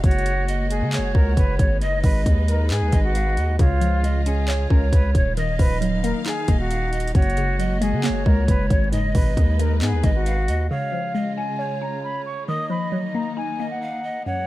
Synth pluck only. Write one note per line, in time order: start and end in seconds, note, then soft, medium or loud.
3.60 4.71 C#3 medium
3.81 4.92 F3 medium
4.03 5.15 G#3 medium
4.26 4.69 C#4 loud
4.48 5.37 C#5 medium
4.70 5.37 C#4 medium
5.37 6.48 D#3 medium
5.59 6.70 F3 medium
5.81 6.92 F#3 medium
6.04 6.47 A#3 medium
6.26 7.15 D#4 medium
6.48 7.15 A#3 medium
7.15 8.26 F#2 medium
7.37 8.48 C#3 medium
7.59 8.70 F#3 medium
7.81 8.25 G#3 loud
8.04 8.93 A#3 medium
8.27 8.93 G#3 medium
8.92 10.04 G#2 medium
9.15 10.26 B2 medium
9.38 10.48 D#3 medium
9.59 10.02 G#3 loud
9.82 10.70 B3 medium
10.03 10.70 G#3 medium
10.71 11.82 C#3 medium
10.92 12.04 F3 medium
11.15 12.26 G#3 medium
11.38 11.80 C#4 loud
11.59 12.48 C#5 medium
11.82 12.48 C#4 medium
12.48 13.59 D#3 medium
12.70 13.81 F3 medium
12.92 14.03 F#3 medium
13.15 13.58 A#3 medium
13.37 14.26 D#4 medium
13.59 14.26 A#3 medium
14.26 14.47 F#2 medium